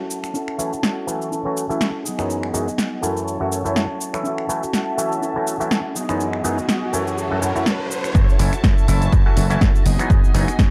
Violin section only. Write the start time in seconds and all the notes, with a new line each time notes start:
Already playing: F#4 C#5 A5
2.05 D#5 G#5
3.02 C#5 A5
4.24 F#4 E5 A5
5.96 F#4 D#5 G#5
6.93 C#5 A5
8.15 F#4 E5 A5
9.85 D#5 G#5